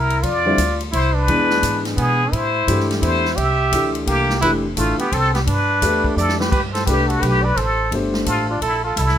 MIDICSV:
0, 0, Header, 1, 7, 480
1, 0, Start_track
1, 0, Tempo, 349447
1, 319, Time_signature, 3, 2, 24, 8
1, 12611, End_track
2, 0, Start_track
2, 0, Title_t, "Muted trumpet"
2, 0, Program_c, 0, 59
2, 0, Note_on_c, 0, 70, 91
2, 328, Note_on_c, 0, 74, 90
2, 349, Note_off_c, 0, 70, 0
2, 1110, Note_off_c, 0, 74, 0
2, 1289, Note_on_c, 0, 72, 96
2, 1585, Note_on_c, 0, 71, 82
2, 1606, Note_off_c, 0, 72, 0
2, 2545, Note_off_c, 0, 71, 0
2, 2716, Note_on_c, 0, 68, 89
2, 3206, Note_on_c, 0, 72, 96
2, 3227, Note_off_c, 0, 68, 0
2, 3989, Note_off_c, 0, 72, 0
2, 4166, Note_on_c, 0, 72, 96
2, 4638, Note_on_c, 0, 76, 98
2, 4659, Note_off_c, 0, 72, 0
2, 5425, Note_off_c, 0, 76, 0
2, 5599, Note_on_c, 0, 67, 94
2, 6045, Note_off_c, 0, 67, 0
2, 6074, Note_on_c, 0, 71, 90
2, 6213, Note_off_c, 0, 71, 0
2, 6564, Note_on_c, 0, 65, 83
2, 6846, Note_off_c, 0, 65, 0
2, 6873, Note_on_c, 0, 67, 85
2, 7056, Note_on_c, 0, 69, 97
2, 7077, Note_off_c, 0, 67, 0
2, 7341, Note_off_c, 0, 69, 0
2, 7349, Note_on_c, 0, 67, 74
2, 7427, Note_off_c, 0, 67, 0
2, 7535, Note_on_c, 0, 71, 79
2, 8433, Note_off_c, 0, 71, 0
2, 8507, Note_on_c, 0, 69, 85
2, 8779, Note_off_c, 0, 69, 0
2, 8794, Note_on_c, 0, 67, 67
2, 8942, Note_off_c, 0, 67, 0
2, 8950, Note_on_c, 0, 67, 74
2, 9090, Note_off_c, 0, 67, 0
2, 9251, Note_on_c, 0, 69, 74
2, 9420, Note_off_c, 0, 69, 0
2, 9427, Note_on_c, 0, 67, 78
2, 9739, Note_on_c, 0, 66, 77
2, 9760, Note_off_c, 0, 67, 0
2, 9917, Note_on_c, 0, 67, 86
2, 9937, Note_off_c, 0, 66, 0
2, 10227, Note_on_c, 0, 71, 88
2, 10247, Note_off_c, 0, 67, 0
2, 10399, Note_on_c, 0, 69, 78
2, 10420, Note_off_c, 0, 71, 0
2, 10880, Note_off_c, 0, 69, 0
2, 11374, Note_on_c, 0, 65, 83
2, 11653, Note_off_c, 0, 65, 0
2, 11684, Note_on_c, 0, 62, 66
2, 11838, Note_off_c, 0, 62, 0
2, 11848, Note_on_c, 0, 64, 72
2, 12130, Note_off_c, 0, 64, 0
2, 12143, Note_on_c, 0, 65, 77
2, 12342, Note_on_c, 0, 64, 80
2, 12363, Note_off_c, 0, 65, 0
2, 12611, Note_off_c, 0, 64, 0
2, 12611, End_track
3, 0, Start_track
3, 0, Title_t, "Trumpet"
3, 0, Program_c, 1, 56
3, 0, Note_on_c, 1, 64, 71
3, 308, Note_on_c, 1, 65, 84
3, 328, Note_off_c, 1, 64, 0
3, 1099, Note_off_c, 1, 65, 0
3, 1258, Note_on_c, 1, 64, 82
3, 1563, Note_on_c, 1, 62, 81
3, 1583, Note_off_c, 1, 64, 0
3, 2534, Note_off_c, 1, 62, 0
3, 2697, Note_on_c, 1, 59, 75
3, 3177, Note_on_c, 1, 64, 77
3, 3198, Note_off_c, 1, 59, 0
3, 3974, Note_off_c, 1, 64, 0
3, 4136, Note_on_c, 1, 64, 81
3, 4611, Note_on_c, 1, 67, 93
3, 4632, Note_off_c, 1, 64, 0
3, 5411, Note_off_c, 1, 67, 0
3, 5574, Note_on_c, 1, 58, 72
3, 6032, Note_off_c, 1, 58, 0
3, 6056, Note_on_c, 1, 64, 89
3, 6199, Note_off_c, 1, 64, 0
3, 6546, Note_on_c, 1, 57, 68
3, 6837, Note_off_c, 1, 57, 0
3, 6848, Note_on_c, 1, 59, 79
3, 7028, Note_on_c, 1, 60, 73
3, 7049, Note_off_c, 1, 59, 0
3, 7322, Note_off_c, 1, 60, 0
3, 7330, Note_on_c, 1, 59, 72
3, 7411, Note_off_c, 1, 59, 0
3, 7515, Note_on_c, 1, 62, 76
3, 8423, Note_off_c, 1, 62, 0
3, 8482, Note_on_c, 1, 74, 72
3, 8766, Note_off_c, 1, 74, 0
3, 8790, Note_on_c, 1, 71, 64
3, 8940, Note_off_c, 1, 71, 0
3, 8948, Note_on_c, 1, 71, 72
3, 9089, Note_off_c, 1, 71, 0
3, 9251, Note_on_c, 1, 72, 69
3, 9420, Note_off_c, 1, 72, 0
3, 9427, Note_on_c, 1, 71, 64
3, 9720, Note_on_c, 1, 69, 67
3, 9741, Note_off_c, 1, 71, 0
3, 9886, Note_on_c, 1, 71, 74
3, 9907, Note_off_c, 1, 69, 0
3, 10192, Note_on_c, 1, 74, 78
3, 10212, Note_off_c, 1, 71, 0
3, 10378, Note_on_c, 1, 72, 71
3, 10399, Note_off_c, 1, 74, 0
3, 10870, Note_off_c, 1, 72, 0
3, 11364, Note_on_c, 1, 69, 65
3, 11648, Note_off_c, 1, 69, 0
3, 11668, Note_on_c, 1, 65, 63
3, 11829, Note_off_c, 1, 65, 0
3, 11842, Note_on_c, 1, 69, 74
3, 12127, Note_off_c, 1, 69, 0
3, 12151, Note_on_c, 1, 69, 69
3, 12318, Note_off_c, 1, 69, 0
3, 12318, Note_on_c, 1, 69, 63
3, 12611, Note_off_c, 1, 69, 0
3, 12611, End_track
4, 0, Start_track
4, 0, Title_t, "Grand piano"
4, 0, Program_c, 2, 0
4, 623, Note_on_c, 2, 50, 72
4, 629, Note_on_c, 2, 55, 70
4, 641, Note_on_c, 2, 60, 67
4, 653, Note_on_c, 2, 64, 83
4, 781, Note_off_c, 2, 50, 0
4, 784, Note_off_c, 2, 55, 0
4, 789, Note_off_c, 2, 60, 0
4, 795, Note_off_c, 2, 64, 0
4, 1760, Note_on_c, 2, 52, 71
4, 1771, Note_on_c, 2, 56, 62
4, 1774, Note_on_c, 2, 59, 65
4, 1785, Note_on_c, 2, 62, 75
4, 3095, Note_off_c, 2, 52, 0
4, 3100, Note_off_c, 2, 56, 0
4, 3102, Note_off_c, 2, 59, 0
4, 3107, Note_off_c, 2, 62, 0
4, 3676, Note_on_c, 2, 52, 58
4, 3679, Note_on_c, 2, 57, 61
4, 3690, Note_on_c, 2, 62, 61
4, 3696, Note_on_c, 2, 67, 75
4, 4402, Note_off_c, 2, 52, 0
4, 4404, Note_off_c, 2, 57, 0
4, 4409, Note_off_c, 2, 62, 0
4, 4412, Note_off_c, 2, 67, 0
4, 5119, Note_on_c, 2, 52, 54
4, 5126, Note_on_c, 2, 57, 52
4, 5134, Note_on_c, 2, 62, 51
4, 5148, Note_on_c, 2, 67, 64
4, 5844, Note_off_c, 2, 52, 0
4, 5847, Note_off_c, 2, 57, 0
4, 5851, Note_off_c, 2, 62, 0
4, 5858, Note_off_c, 2, 67, 0
4, 6077, Note_on_c, 2, 52, 65
4, 6082, Note_on_c, 2, 57, 56
4, 6099, Note_on_c, 2, 62, 62
4, 6101, Note_on_c, 2, 67, 69
4, 6353, Note_off_c, 2, 52, 0
4, 6356, Note_off_c, 2, 57, 0
4, 6364, Note_off_c, 2, 62, 0
4, 6366, Note_off_c, 2, 67, 0
4, 6555, Note_on_c, 2, 52, 57
4, 6559, Note_on_c, 2, 57, 50
4, 6566, Note_on_c, 2, 62, 51
4, 6581, Note_on_c, 2, 65, 58
4, 6833, Note_off_c, 2, 52, 0
4, 6835, Note_off_c, 2, 57, 0
4, 6838, Note_off_c, 2, 62, 0
4, 6845, Note_off_c, 2, 65, 0
4, 7998, Note_on_c, 2, 57, 75
4, 8004, Note_on_c, 2, 62, 68
4, 8013, Note_on_c, 2, 67, 68
4, 8017, Note_on_c, 2, 71, 77
4, 8724, Note_off_c, 2, 57, 0
4, 8727, Note_off_c, 2, 62, 0
4, 8732, Note_off_c, 2, 67, 0
4, 8733, Note_off_c, 2, 71, 0
4, 9445, Note_on_c, 2, 57, 64
4, 9456, Note_on_c, 2, 62, 61
4, 9463, Note_on_c, 2, 67, 59
4, 9472, Note_on_c, 2, 71, 68
4, 10168, Note_off_c, 2, 57, 0
4, 10174, Note_off_c, 2, 62, 0
4, 10177, Note_off_c, 2, 67, 0
4, 10182, Note_off_c, 2, 71, 0
4, 10891, Note_on_c, 2, 57, 61
4, 10901, Note_on_c, 2, 62, 58
4, 10906, Note_on_c, 2, 67, 55
4, 10913, Note_on_c, 2, 72, 70
4, 11611, Note_off_c, 2, 57, 0
4, 11616, Note_off_c, 2, 62, 0
4, 11619, Note_off_c, 2, 67, 0
4, 11622, Note_off_c, 2, 72, 0
4, 12611, End_track
5, 0, Start_track
5, 0, Title_t, "Upright bass"
5, 0, Program_c, 3, 32
5, 0, Note_on_c, 3, 36, 80
5, 301, Note_off_c, 3, 36, 0
5, 316, Note_on_c, 3, 41, 80
5, 783, Note_off_c, 3, 41, 0
5, 794, Note_on_c, 3, 38, 83
5, 1262, Note_off_c, 3, 38, 0
5, 1273, Note_on_c, 3, 36, 84
5, 1741, Note_off_c, 3, 36, 0
5, 1754, Note_on_c, 3, 40, 75
5, 2222, Note_off_c, 3, 40, 0
5, 2233, Note_on_c, 3, 44, 80
5, 2701, Note_off_c, 3, 44, 0
5, 2712, Note_on_c, 3, 47, 84
5, 3181, Note_off_c, 3, 47, 0
5, 3193, Note_on_c, 3, 45, 72
5, 3661, Note_off_c, 3, 45, 0
5, 3677, Note_on_c, 3, 43, 86
5, 4139, Note_off_c, 3, 43, 0
5, 4148, Note_on_c, 3, 40, 82
5, 4618, Note_off_c, 3, 40, 0
5, 4631, Note_on_c, 3, 36, 76
5, 5100, Note_off_c, 3, 36, 0
5, 5112, Note_on_c, 3, 38, 84
5, 5581, Note_off_c, 3, 38, 0
5, 5590, Note_on_c, 3, 36, 76
5, 6060, Note_off_c, 3, 36, 0
5, 6074, Note_on_c, 3, 29, 74
5, 6542, Note_off_c, 3, 29, 0
5, 6551, Note_on_c, 3, 33, 86
5, 6840, Note_off_c, 3, 33, 0
5, 7036, Note_on_c, 3, 36, 81
5, 7503, Note_off_c, 3, 36, 0
5, 7514, Note_on_c, 3, 43, 81
5, 7982, Note_off_c, 3, 43, 0
5, 7994, Note_on_c, 3, 40, 80
5, 8459, Note_off_c, 3, 40, 0
5, 8467, Note_on_c, 3, 41, 83
5, 8939, Note_off_c, 3, 41, 0
5, 8959, Note_on_c, 3, 43, 67
5, 9425, Note_off_c, 3, 43, 0
5, 9431, Note_on_c, 3, 36, 75
5, 9901, Note_off_c, 3, 36, 0
5, 9914, Note_on_c, 3, 35, 83
5, 10383, Note_off_c, 3, 35, 0
5, 10395, Note_on_c, 3, 33, 68
5, 10864, Note_off_c, 3, 33, 0
5, 10870, Note_on_c, 3, 31, 80
5, 11341, Note_off_c, 3, 31, 0
5, 11355, Note_on_c, 3, 33, 87
5, 11824, Note_off_c, 3, 33, 0
5, 11832, Note_on_c, 3, 34, 66
5, 12302, Note_off_c, 3, 34, 0
5, 12312, Note_on_c, 3, 36, 80
5, 12601, Note_off_c, 3, 36, 0
5, 12611, End_track
6, 0, Start_track
6, 0, Title_t, "Muted upright bass strokes"
6, 6863, Note_on_c, 9, 29, 38
6, 7000, Note_off_c, 9, 29, 0
6, 12611, End_track
7, 0, Start_track
7, 0, Title_t, "Drums"
7, 141, Note_on_c, 9, 51, 41
7, 279, Note_off_c, 9, 51, 0
7, 318, Note_on_c, 9, 36, 18
7, 321, Note_on_c, 9, 51, 54
7, 456, Note_off_c, 9, 36, 0
7, 458, Note_off_c, 9, 51, 0
7, 798, Note_on_c, 9, 36, 17
7, 799, Note_on_c, 9, 44, 58
7, 799, Note_on_c, 9, 51, 70
7, 935, Note_off_c, 9, 36, 0
7, 936, Note_off_c, 9, 44, 0
7, 936, Note_off_c, 9, 51, 0
7, 1105, Note_on_c, 9, 51, 42
7, 1243, Note_off_c, 9, 51, 0
7, 1277, Note_on_c, 9, 36, 25
7, 1281, Note_on_c, 9, 51, 60
7, 1415, Note_off_c, 9, 36, 0
7, 1419, Note_off_c, 9, 51, 0
7, 1756, Note_on_c, 9, 36, 19
7, 1760, Note_on_c, 9, 51, 58
7, 1893, Note_off_c, 9, 36, 0
7, 1897, Note_off_c, 9, 51, 0
7, 2065, Note_on_c, 9, 38, 49
7, 2202, Note_off_c, 9, 38, 0
7, 2235, Note_on_c, 9, 36, 20
7, 2237, Note_on_c, 9, 44, 58
7, 2237, Note_on_c, 9, 51, 64
7, 2373, Note_off_c, 9, 36, 0
7, 2374, Note_off_c, 9, 44, 0
7, 2374, Note_off_c, 9, 51, 0
7, 2542, Note_on_c, 9, 38, 34
7, 2543, Note_on_c, 9, 51, 43
7, 2679, Note_off_c, 9, 38, 0
7, 2681, Note_off_c, 9, 51, 0
7, 2714, Note_on_c, 9, 36, 18
7, 2718, Note_on_c, 9, 51, 57
7, 2852, Note_off_c, 9, 36, 0
7, 2855, Note_off_c, 9, 51, 0
7, 3196, Note_on_c, 9, 36, 19
7, 3203, Note_on_c, 9, 51, 53
7, 3333, Note_off_c, 9, 36, 0
7, 3341, Note_off_c, 9, 51, 0
7, 3676, Note_on_c, 9, 36, 20
7, 3683, Note_on_c, 9, 44, 44
7, 3683, Note_on_c, 9, 51, 65
7, 3814, Note_off_c, 9, 36, 0
7, 3820, Note_off_c, 9, 44, 0
7, 3820, Note_off_c, 9, 51, 0
7, 3845, Note_on_c, 9, 38, 25
7, 3982, Note_off_c, 9, 38, 0
7, 3991, Note_on_c, 9, 51, 43
7, 3996, Note_on_c, 9, 38, 42
7, 4129, Note_off_c, 9, 51, 0
7, 4133, Note_off_c, 9, 38, 0
7, 4152, Note_on_c, 9, 36, 21
7, 4158, Note_on_c, 9, 51, 66
7, 4289, Note_off_c, 9, 36, 0
7, 4295, Note_off_c, 9, 51, 0
7, 4464, Note_on_c, 9, 38, 37
7, 4601, Note_off_c, 9, 38, 0
7, 4633, Note_on_c, 9, 36, 24
7, 4637, Note_on_c, 9, 51, 57
7, 4771, Note_off_c, 9, 36, 0
7, 4774, Note_off_c, 9, 51, 0
7, 5113, Note_on_c, 9, 36, 20
7, 5117, Note_on_c, 9, 44, 52
7, 5117, Note_on_c, 9, 51, 73
7, 5250, Note_off_c, 9, 36, 0
7, 5255, Note_off_c, 9, 44, 0
7, 5255, Note_off_c, 9, 51, 0
7, 5424, Note_on_c, 9, 51, 42
7, 5562, Note_off_c, 9, 51, 0
7, 5592, Note_on_c, 9, 36, 30
7, 5596, Note_on_c, 9, 51, 65
7, 5729, Note_off_c, 9, 36, 0
7, 5733, Note_off_c, 9, 51, 0
7, 5904, Note_on_c, 9, 38, 51
7, 6041, Note_off_c, 9, 38, 0
7, 6073, Note_on_c, 9, 36, 20
7, 6075, Note_on_c, 9, 51, 58
7, 6210, Note_off_c, 9, 36, 0
7, 6213, Note_off_c, 9, 51, 0
7, 6549, Note_on_c, 9, 44, 64
7, 6549, Note_on_c, 9, 51, 66
7, 6551, Note_on_c, 9, 36, 24
7, 6687, Note_off_c, 9, 44, 0
7, 6687, Note_off_c, 9, 51, 0
7, 6688, Note_off_c, 9, 36, 0
7, 6859, Note_on_c, 9, 51, 43
7, 6997, Note_off_c, 9, 51, 0
7, 7035, Note_on_c, 9, 36, 29
7, 7039, Note_on_c, 9, 51, 64
7, 7172, Note_off_c, 9, 36, 0
7, 7176, Note_off_c, 9, 51, 0
7, 7344, Note_on_c, 9, 38, 37
7, 7345, Note_on_c, 9, 51, 39
7, 7481, Note_off_c, 9, 38, 0
7, 7483, Note_off_c, 9, 51, 0
7, 7514, Note_on_c, 9, 36, 17
7, 7518, Note_on_c, 9, 51, 64
7, 7651, Note_off_c, 9, 36, 0
7, 7656, Note_off_c, 9, 51, 0
7, 7994, Note_on_c, 9, 36, 25
7, 7994, Note_on_c, 9, 44, 61
7, 7994, Note_on_c, 9, 51, 63
7, 8132, Note_off_c, 9, 36, 0
7, 8132, Note_off_c, 9, 44, 0
7, 8132, Note_off_c, 9, 51, 0
7, 8302, Note_on_c, 9, 36, 49
7, 8439, Note_off_c, 9, 36, 0
7, 8482, Note_on_c, 9, 44, 53
7, 8619, Note_off_c, 9, 44, 0
7, 8637, Note_on_c, 9, 38, 52
7, 8774, Note_off_c, 9, 38, 0
7, 8801, Note_on_c, 9, 38, 76
7, 8939, Note_off_c, 9, 38, 0
7, 8960, Note_on_c, 9, 36, 69
7, 8961, Note_on_c, 9, 49, 59
7, 9097, Note_off_c, 9, 36, 0
7, 9099, Note_off_c, 9, 49, 0
7, 9270, Note_on_c, 9, 38, 43
7, 9271, Note_on_c, 9, 51, 39
7, 9407, Note_off_c, 9, 38, 0
7, 9408, Note_off_c, 9, 51, 0
7, 9437, Note_on_c, 9, 36, 25
7, 9440, Note_on_c, 9, 44, 44
7, 9440, Note_on_c, 9, 51, 69
7, 9574, Note_off_c, 9, 36, 0
7, 9577, Note_off_c, 9, 44, 0
7, 9577, Note_off_c, 9, 51, 0
7, 9750, Note_on_c, 9, 51, 42
7, 9888, Note_off_c, 9, 51, 0
7, 9918, Note_on_c, 9, 36, 29
7, 9927, Note_on_c, 9, 51, 58
7, 10055, Note_off_c, 9, 36, 0
7, 10065, Note_off_c, 9, 51, 0
7, 10396, Note_on_c, 9, 36, 18
7, 10403, Note_on_c, 9, 51, 53
7, 10533, Note_off_c, 9, 36, 0
7, 10540, Note_off_c, 9, 51, 0
7, 10876, Note_on_c, 9, 36, 17
7, 10878, Note_on_c, 9, 51, 55
7, 11013, Note_off_c, 9, 36, 0
7, 11016, Note_off_c, 9, 51, 0
7, 11176, Note_on_c, 9, 38, 51
7, 11314, Note_off_c, 9, 38, 0
7, 11352, Note_on_c, 9, 44, 53
7, 11352, Note_on_c, 9, 51, 60
7, 11353, Note_on_c, 9, 36, 25
7, 11489, Note_off_c, 9, 44, 0
7, 11489, Note_off_c, 9, 51, 0
7, 11490, Note_off_c, 9, 36, 0
7, 11834, Note_on_c, 9, 36, 20
7, 11838, Note_on_c, 9, 51, 59
7, 11972, Note_off_c, 9, 36, 0
7, 11975, Note_off_c, 9, 51, 0
7, 12317, Note_on_c, 9, 36, 22
7, 12319, Note_on_c, 9, 44, 54
7, 12319, Note_on_c, 9, 51, 70
7, 12454, Note_off_c, 9, 36, 0
7, 12457, Note_off_c, 9, 44, 0
7, 12457, Note_off_c, 9, 51, 0
7, 12475, Note_on_c, 9, 38, 28
7, 12611, Note_off_c, 9, 38, 0
7, 12611, End_track
0, 0, End_of_file